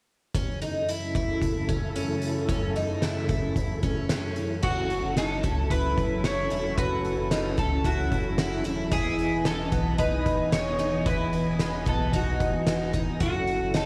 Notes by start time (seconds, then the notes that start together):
0.34 F#2 C#3 C#4 E4 A4, kick, closed hi-hat
0.61 D#4, closed hi-hat
0.88 E4, closed hi-hat
1.15 E4, kick, closed hi-hat
1.42 kick, closed hi-hat
1.69 C#4, kick, closed hi-hat
1.96 C#4, closed hi-hat
2.22 closed hi-hat
2.49 C#4, kick, closed hi-hat
2.76 D#4, closed hi-hat
3.02 E4, snare, closed hi-hat
3.29 E4, kick, closed hi-hat
3.56 kick, closed hi-hat
3.83 C#4, kick, closed hi-hat
4.09 C#4, snare, closed hi-hat
4.36 closed hi-hat
4.63 F#1 F#3 C#4 E4 F#4 A4, kick, crash
4.90 closed hi-hat
5.03 F#1
5.17 D#4 A4, snare, closed hi-hat
5.43 C#2 C#4, kick, closed hi-hat
5.70 E4 B4, kick, closed hi-hat
5.97 F#1, kick, closed hi-hat
6.24 E4 C#5, snare, closed hi-hat
6.50 E1 E4, closed hi-hat
6.78 F#1 F#4 B4, kick, closed hi-hat
7.05 closed hi-hat
7.17 F#1
7.31 D#4, snare, closed hi-hat
7.57 C#2 C#4 A4, kick, closed hi-hat
7.85 E4 F#4, kick, closed hi-hat
8.12 F#1, kick, closed hi-hat
8.38 E4, snare, closed hi-hat
8.64 D#1 E4, closed hi-hat
8.91 E1 E3 B3 E4 G#4 D#5 G#5, kick, closed hi-hat
9.19 closed hi-hat
9.32 E1
9.45 C#4 A4, snare, closed hi-hat
9.72 B1 B3, kick, closed hi-hat
9.98 D#4 B4, kick, closed hi-hat
10.26 E1, kick, closed hi-hat
10.52 D#4 C#5, snare, closed hi-hat
10.79 D#1 D#4, closed hi-hat
11.06 E1 E4 B4, kick, closed hi-hat
11.33 closed hi-hat
11.46 E1
11.59 C#4, snare, closed hi-hat
11.86 B1 B3 A4, kick, closed hi-hat
12.13 D#4 F#4, kick, closed hi-hat
12.40 E1, kick, closed hi-hat
12.67 D#4, snare, closed hi-hat
12.93 E1 D#4, kick, closed hi-hat
13.20 F#1 F#3 C#4 E4 F#4 A4, kick, closed hi-hat
13.48 closed hi-hat
13.61 F#1
13.74 D#4 A4, snare, closed hi-hat